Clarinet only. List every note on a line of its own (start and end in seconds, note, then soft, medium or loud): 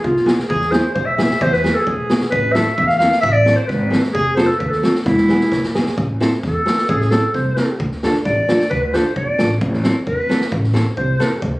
0.04 0.38 F4 medium
0.49 0.73 G#4 loud
0.71 0.94 C5 medium
0.94 1.07 C5 medium
1.05 1.16 E5 medium
1.17 1.43 E5 loud
1.42 1.54 C5 loud
1.53 1.76 B4 loud
1.74 1.80 A4 medium
1.78 1.82 G#4 medium
1.78 1.86 A4 medium
1.85 2.20 G#4 medium
2.30 2.54 B4 loud
2.52 2.75 E5 loud
2.75 2.86 E5 medium
2.87 2.97 F5 medium
2.98 3.20 F5 medium
3.21 3.34 E5 loud
3.32 3.57 D5 loud
3.56 3.67 C5 medium
3.67 4.00 B4 medium
4.13 4.35 G#4 loud
4.36 4.48 C5 loud
4.46 4.60 A4 medium
4.59 4.69 B4 medium
4.70 4.92 A4 medium
5.04 5.69 E4 loud
6.44 6.86 A4 medium
6.89 6.92 G#4 medium
6.89 6.97 A4 medium
6.95 7.00 G#4 medium
7.00 7.12 G#4 medium
7.11 7.34 A4 medium
7.34 7.76 C5 medium
8.24 8.67 D5 medium
8.70 8.81 B4 loud
8.82 8.95 B4 medium
8.93 9.16 C5 medium
9.16 9.58 D5 medium
10.06 10.48 B4 medium
10.97 11.39 C5 medium